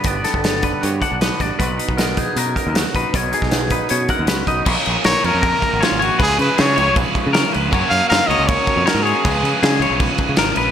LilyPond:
<<
  \new Staff \with { instrumentName = "Clean electric guitar" } { \time 4/4 \key b \lydian \tempo 4 = 157 d''8 a'4 b'8 cis''8 fis''8 b'8 d''8 | b'4 ais'8 gis'8 ais'4 r8 b'8 | cis''8 gis'4 b'8 cis''8 fis''8 b'8 dis''8 | cis''4 ais'8 cis''8 ais'4 cis''8 cis''8 |
b'4 gis'8 cis''8 b'4 ais'8 b'8 | cis''4 ais'8 cis''8 ais'4 cis''8 cis''8 | b'4 gis'8 cis''8 b'4 ais'8 b'8 | }
  \new Staff \with { instrumentName = "Trumpet" } { \time 4/4 \key b \lydian r1 | r1 | r1 | r4 cis''8 ais'4. eis'8 fis'8 |
gis'8 b'8 cis''4 r2 | r8 eis''8 eis''8 dis''8 cis''4 ais'8 gis'8~ | gis'4 r2. | }
  \new Staff \with { instrumentName = "Overdriven electric guitar" } { \time 4/4 \key b \lydian r1 | r1 | r1 | <ais, eis ais cis' eis' ais'>1 |
<cis eis gis cis' eis' b'>1 | <fis ais cis' fis' ais'>1 | <cis eis gis cis' eis' b'>1 | }
  \new Staff \with { instrumentName = "Clean electric guitar" } { \time 4/4 \key b \lydian << { <b fis'>4 b4 fis'8 d'8 b8 r8 | r8 dis'4 dis'4 ais'8 fis'8 dis'8 | r8 dis'4 dis'4 ais'8 fis'8 dis'8 | r1 |
r1 | r1 | r1 | } \\ { g,8 g4 d2 g,8 | b,4 b4 fis,2 | b,4 b4 fis,2 | r1 |
r1 | r1 | r1 | } >> }
  \new Staff \with { instrumentName = "Fingered electric bass" } { \clef bass \time 4/4 \key b \lydian g,,8 r16 g,,8. fis,,16 r16 g,8 r16 b,,8 r16 a,,16 r16 | b,,8 r16 b,,8. ais,,16 r16 b,8 r16 dis,8 r16 ais,,16 r16 | b,,8 r16 b,,8. ais,,16 r16 b,8 r16 dis,16 cis,8 b,,8 | ais,,16 r16 ais,,16 r16 ais,,16 r16 eis,16 eis,8 r8 gis,,16 r16 gis,,8 r16 |
cis,8 cis16 r16 cis8 cis,16 b,,8 r8 cis8 r16 cis,8 | fis,16 r16 fis,16 r16 fis,16 r16 cis,16 cis,8 r8 eis,16 r16 gis,8 r16 | cis,8 cis16 r16 cis8 cis,16 b,,8 r8 cis16 gis,,8 ais,,8 | }
  \new DrumStaff \with { instrumentName = "Drums" } \drummode { \time 4/4 <hh bd>8 <hh sn>16 bd16 <hh sn>8 <hh bd>8 hh8 <hh bd>8 <hh sn>8 <hh bd>8 | <hh bd>8 hh16 bd16 <hh sn>8 <hh bd>8 hh8 <hh bd>8 <hh sn>16 sn16 <hh bd>8 | <hh bd>8 hh16 <bd sn>16 <hh sn>8 <hh bd>8 hh8 <hh bd>8 <hh sn>8 <hh bd>8 | <cymc bd>8 cymc8 <cymc sn>8 cymc8 <cymc bd>8 <cymc bd>8 <cymc sn>8 cymc8 |
<cymc bd>8 cymc8 <cymc sn>8 cymc8 <cymc bd>8 <cymc bd>8 <cymc sn>8 cymc8 | <cymc bd>8 cymc8 <cymc sn>8 cymc8 <cymc bd>8 <cymc bd>8 <cymc sn>8 cymc8 | <cymc bd>8 cymc8 <cymc sn>8 cymc8 <cymc bd>8 <cymc bd>8 <cymc sn>8 cymc8 | }
>>